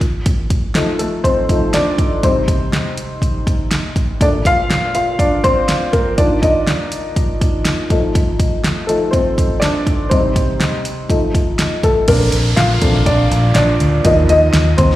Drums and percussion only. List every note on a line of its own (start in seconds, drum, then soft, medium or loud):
0.01 kick medium
0.01 closed hi-hat soft
0.26 kick medium
0.26 closed hi-hat medium
0.50 kick medium
0.50 closed hi-hat medium
0.75 snare medium
0.75 closed hi-hat medium
0.99 closed hi-hat medium
1.24 kick medium
1.24 closed hi-hat medium
1.49 kick medium
1.49 closed hi-hat medium
1.73 snare medium
1.73 closed hi-hat medium
1.98 kick medium
1.98 closed hi-hat soft
2.23 kick medium
2.23 closed hi-hat medium
2.48 kick medium
2.48 closed hi-hat medium
2.73 snare medium
2.73 closed hi-hat medium
2.98 closed hi-hat medium
3.22 kick medium
3.22 closed hi-hat medium
3.47 kick medium
3.47 closed hi-hat medium
3.71 snare medium
3.71 closed hi-hat medium
3.96 kick medium
3.96 closed hi-hat soft
4.21 kick medium
4.21 closed hi-hat medium
4.45 kick medium
4.45 closed hi-hat medium
4.70 snare medium
4.70 closed hi-hat medium
4.95 closed hi-hat medium
5.19 kick medium
5.19 closed hi-hat medium
5.44 kick medium
5.44 closed hi-hat medium
5.68 snare medium
5.68 closed hi-hat medium
5.93 kick medium
5.93 closed hi-hat soft
6.18 kick medium
6.18 closed hi-hat medium
6.43 kick medium
6.43 closed hi-hat medium
6.67 snare medium
6.67 closed hi-hat medium
6.92 closed hi-hat medium
7.16 kick medium
7.16 closed hi-hat medium
7.41 kick medium
7.41 closed hi-hat medium
7.65 snare medium
7.65 closed hi-hat medium
7.90 kick medium
7.90 closed hi-hat soft
8.15 kick medium
8.15 closed hi-hat medium
8.40 kick medium
8.40 closed hi-hat medium
8.64 snare medium
8.64 closed hi-hat medium
8.89 closed hi-hat medium
9.13 kick medium
9.13 closed hi-hat medium
9.38 kick medium
9.38 closed hi-hat medium
9.62 snare medium
9.62 closed hi-hat medium
9.87 kick medium
9.87 closed hi-hat soft
10.11 kick medium
10.11 closed hi-hat medium
10.36 kick medium
10.36 closed hi-hat medium
10.60 snare medium
10.60 closed hi-hat medium
10.85 closed hi-hat medium
11.10 kick medium
11.10 closed hi-hat medium
11.35 kick medium
11.35 closed hi-hat medium
11.59 snare medium
11.59 closed hi-hat medium
11.83 kick medium
11.83 closed hi-hat soft
12.08 kick loud
12.08 closed hi-hat medium
12.08 crash medium
12.32 closed hi-hat medium
12.57 snare loud
12.57 closed hi-hat medium
12.82 kick medium
12.82 closed hi-hat medium
12.94 snare soft
13.06 kick medium
13.06 closed hi-hat medium
13.32 closed hi-hat medium
13.55 snare medium
13.55 closed hi-hat medium
13.80 closed hi-hat medium
14.05 kick loud
14.05 closed hi-hat medium
14.29 closed hi-hat medium
14.53 snare loud
14.53 closed hi-hat medium
14.78 kick medium
14.78 closed hi-hat medium
14.91 snare soft